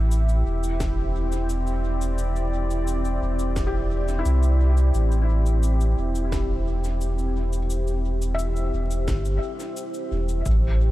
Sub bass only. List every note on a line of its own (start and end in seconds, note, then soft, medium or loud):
0.00 0.43 A1 medium
0.46 3.19 E1 medium
3.22 4.22 E1 medium
4.25 4.91 C2 medium
4.94 5.94 A1 loud
5.98 8.70 E1 medium
8.73 9.07 E1 medium
9.08 9.38 G1 loud
10.11 10.42 E1 medium
10.46 10.91 A1 loud